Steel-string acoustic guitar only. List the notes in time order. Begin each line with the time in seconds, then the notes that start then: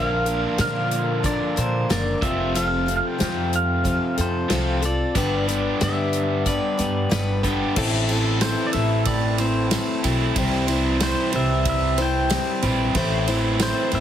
Already playing: A#2 D3 F3 A#3 D4 A#4
0.26 F3 A#3 D4 A#4
0.58 A#2 D3 F3 A#3 D4 A#4
1.23 F3 A#3 D4 A#4
1.56 F3 A#3 D4 A#4
1.89 A#2 D3 F3 A#3 D4 A#4
2.22 C4 F4 A4
2.55 F3 C4 F4 A4
2.86 C4 F4 A4
3.18 F3 C4 F4 A4
3.84 F3 C4 F4 A4
4.18 C4 F4 A4
4.50 F3 C4 F4 A4
4.82 C4 F4 A4
5.15 G2 D3 G3 B3 D4 B4
5.48 G3 B3 D4 B4
5.80 G2 D3 G3 B3 D4 B4
6.45 G3 B3 D4 B4
6.77 G3 B3 D4 B4
7.10 G2 D3 G3 B3 D4 B4
7.43 G3 B3 D4 B4
7.76 A2 E3 A3 C4 E4 A4
8.09 A3 C4 E4 A4
8.41 A3 C4 E4 A4
8.74 A3 C4 E4 A4
9.38 A3 C4 E4 A4
9.70 A3 C4 E4 A4
10.36 C3 G3 C4 E4 C5
10.67 C4 E4 C5
11.00 G3 C4 E4 C5
11.32 C4 E4 C5
11.98 C4 E4 C5
12.31 G3 C4 E4 C5
12.95 A2 E3 A3 C4 E4 C5
13.27 A3 C4 E4 C5
13.59 A3 C4 E4 C5
13.92 A3 C4 E4 C5